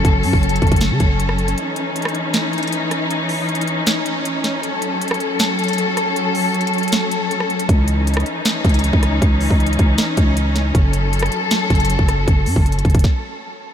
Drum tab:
HH |x-----------o-----------x---x---x---x--x--x--x--x-----------x-----------x-----------x-----x-----|x-----------x-----------x---x---x---x-----------x-----------x--x--x--x--x-----------x-----------|x-----------o-----------x---x---x---x-----------x-----------x-----------x-----------x-----------|x-----------x-----------x---x---x---x-----------x-----------x--x--x--x--x-----------x-----------|
SD |------------------------------------------------o-----------------------------r-----------------|------------------------------r-----------------o-----------------------------------r-----------|------------------------------------------------o-----------------------------------o-----------|------------------------------r-----------------o-----------------------------------r-----------|
BD |o-----------------o-----------------o-----o-----------------o-----------------------------------|------------------------------------------------------------------------------------------------|------------------------------------------------------------------------------------------------|------------------------------------------------------------------------------------------------|

HH |x-----------o-----------x---x---x---x--x--x--x--x-----------x-----------x-----------x-----x-----|x-----------x-----------x---x---x---x-----------x-----------x--x--x--x--x-----------x-----------|x-----------o-----------x---x---x---x-----------x-----------x-----------x-----------x-----------|x-----------x-----------x---x---x---x-----------x-----------x--x--x--x--x-----------x-----------|
SD |------------------------------------------------o-----------------------------r-----------------|------------------------------r-----------------o-----------------------------------r-----------|------------------------------------------------o-----------------------------------o-----------|------------------------------r-----------------o-----------------------------------r-----------|
BD |------------------------------------------------------------------------------------------------|o-----------------------------------------------------------o-----------------o-----------------|o-----------------o-----------------o-----------------------o-----------------------------------|o-----------------------------------------------------------o-----------------o-----------------|

HH |x-----------o-----------x---x---x---x--x--x--x--------------------------------------------------|
SD |------------------------------------------------o-----------------------------------------------|
BD |o-----------------o-----------------o-----o-----o-----------------------------------------------|